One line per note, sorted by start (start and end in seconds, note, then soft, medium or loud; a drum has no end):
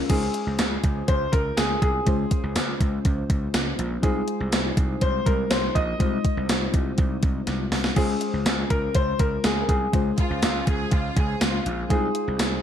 0.00 0.09 G#3 loud
0.00 0.10 C#4 loud
0.00 0.12 F4 loud
0.00 0.12 A#4 loud
0.09 0.27 C#2 loud
0.09 2.02 G#3 medium
0.09 2.03 C#4 medium
0.09 0.16 D#4 soft
0.09 1.11 G#4 medium
0.09 2.04 C5 medium
0.09 kick loud
0.09 closed hi-hat medium
0.09 crash loud
0.17 2.06 F4 medium
0.34 closed hi-hat medium
0.47 0.56 C#2 medium
0.58 0.77 C#2 loud
0.58 snare loud
0.58 closed hi-hat medium
0.58 tambourine medium
0.84 1.01 C#2 loud
0.84 kick medium
0.84 closed hi-hat medium
1.08 1.26 C#2 loud
1.08 1.31 C5 loud
1.08 kick loud
1.08 closed hi-hat medium
1.32 1.51 C#2 loud
1.32 1.58 A#4 medium
1.32 kick loud
1.32 closed hi-hat medium
1.57 1.75 C#2 loud
1.57 1.80 G#4 medium
1.57 snare loud
1.57 closed hi-hat medium
1.57 tambourine medium
1.82 2.00 C2 loud
1.82 2.52 G#4 medium
1.82 kick medium
1.82 closed hi-hat medium
2.06 2.24 C#2 loud
2.06 3.99 G#3 medium
2.06 3.99 C#4 medium
2.06 4.00 F4 medium
2.06 4.00 C5 medium
2.06 kick loud
2.06 closed hi-hat medium
2.31 kick medium
2.31 closed hi-hat medium
2.43 2.52 C#2 medium
2.55 2.73 C#2 loud
2.55 snare loud
2.55 closed hi-hat loud
2.55 tambourine medium
2.81 2.98 C#2 loud
2.81 kick medium
2.81 closed hi-hat medium
3.05 3.23 C#2 loud
3.05 kick loud
3.05 closed hi-hat medium
3.30 3.47 C#2 medium
3.30 kick loud
3.30 closed hi-hat medium
3.54 3.72 C#2 loud
3.54 snare loud
3.54 closed hi-hat medium
3.54 tambourine medium
3.79 3.96 A#1 medium
3.79 closed hi-hat medium
4.02 4.21 C2 loud
4.02 5.96 G#3 medium
4.02 5.96 D#4 medium
4.02 5.96 F4 medium
4.02 5.04 G#4 medium
4.02 5.97 C5 medium
4.02 kick loud
4.02 closed hi-hat medium
4.28 closed hi-hat medium
4.40 4.49 C2 loud
4.52 4.70 C2 loud
4.52 snare loud
4.52 closed hi-hat loud
4.52 tambourine medium
4.77 4.95 C2 loud
4.77 kick medium
4.77 closed hi-hat medium
5.01 5.19 C2 loud
5.01 5.27 C5 loud
5.01 kick loud
5.01 closed hi-hat medium
5.26 5.44 C2 loud
5.26 5.49 A#4 medium
5.26 kick loud
5.26 closed hi-hat medium
5.50 5.69 C2 loud
5.50 5.73 C5 loud
5.50 snare loud
5.50 closed hi-hat medium
5.50 tambourine medium
5.75 5.93 A#1 medium
5.75 6.45 D#5 loud
5.75 kick medium
5.75 closed hi-hat medium
5.99 6.18 C2 loud
5.99 7.92 G#3 medium
5.99 7.93 D#4 medium
5.99 7.93 F4 medium
5.99 7.93 C5 medium
5.99 kick loud
5.99 closed hi-hat medium
6.25 kick loud
6.25 closed hi-hat medium
6.37 6.46 C2 medium
6.49 6.67 C2 loud
6.49 snare loud
6.49 closed hi-hat loud
6.49 tambourine medium
6.74 6.91 C2 medium
6.74 kick medium
6.74 closed hi-hat medium
6.98 7.16 C2 loud
6.98 kick loud
6.98 closed hi-hat medium
7.23 7.41 C2 medium
7.23 kick loud
7.23 closed hi-hat medium
7.47 7.65 C2 loud
7.47 snare medium
7.47 closed hi-hat medium
7.72 7.90 C2 medium
7.72 snare medium
7.72 open hi-hat medium
7.84 snare medium
7.96 8.14 C#2 loud
7.96 9.89 G#3 medium
7.96 9.89 C#4 medium
7.96 9.90 F4 medium
7.96 8.73 G#4 medium
7.96 9.90 C5 medium
7.96 kick loud
7.96 crash medium
8.21 closed hi-hat medium
8.33 8.42 C#2 medium
8.46 8.63 C#2 loud
8.46 snare loud
8.46 closed hi-hat loud
8.46 tambourine medium
8.70 8.88 C#2 loud
8.70 8.96 A#4 medium
8.70 kick medium
8.70 closed hi-hat medium
8.95 9.13 C#2 loud
8.95 9.18 C5 loud
8.95 kick loud
8.95 closed hi-hat medium
9.19 9.37 C#2 loud
9.19 9.45 A#4 loud
9.19 kick loud
9.19 closed hi-hat medium
9.44 9.62 C#2 loud
9.44 9.62 G#4 medium
9.44 snare loud
9.44 closed hi-hat medium
9.44 tambourine medium
9.62 9.69 A#4 medium
9.69 9.87 C2 medium
9.69 10.38 G#4 medium
9.69 kick medium
9.69 closed hi-hat medium
9.93 10.11 C#2 loud
9.93 11.86 G#3 medium
9.93 11.86 C#4 medium
9.93 11.87 F4 medium
9.93 11.87 C5 medium
9.93 kick loud
9.93 closed hi-hat medium
10.18 10.64 F4 medium
10.18 kick loud
10.18 closed hi-hat medium
10.30 10.39 C#2 medium
10.42 10.60 C#2 loud
10.42 snare loud
10.42 closed hi-hat loud
10.42 tambourine medium
10.67 10.85 C#2 loud
10.67 10.92 G#4 loud
10.67 kick medium
10.67 closed hi-hat medium
10.91 11.10 C#2 loud
10.91 11.16 F4 loud
10.91 kick loud
10.91 closed hi-hat medium
11.17 11.34 C#2 medium
11.17 11.41 G#4 loud
11.17 kick loud
11.17 closed hi-hat medium
11.41 11.59 C#2 loud
11.41 11.78 F4 medium
11.41 snare loud
11.41 closed hi-hat medium
11.41 tambourine medium
11.66 11.83 A#1 medium
11.66 closed hi-hat medium
11.89 12.08 C2 loud
11.89 12.62 G#3 medium
11.89 12.62 D#4 medium
11.89 12.62 F4 medium
11.89 12.62 G#4 medium
11.89 12.62 C5 medium
11.89 kick loud
11.89 closed hi-hat medium
12.15 closed hi-hat medium
12.28 12.36 C2 loud
12.39 12.57 C2 loud
12.39 snare loud
12.39 closed hi-hat loud
12.39 tambourine medium